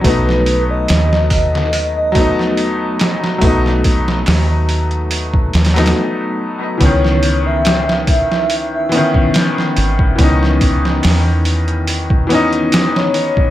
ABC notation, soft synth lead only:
X:1
M:4/4
L:1/16
Q:"Swing 16ths" 1/4=71
K:C#m
V:1 name="Soft synth lead"
B3 d3 d3 d3 z4 | z16 | c3 e3 e3 e3 z4 | z12 z c3 |]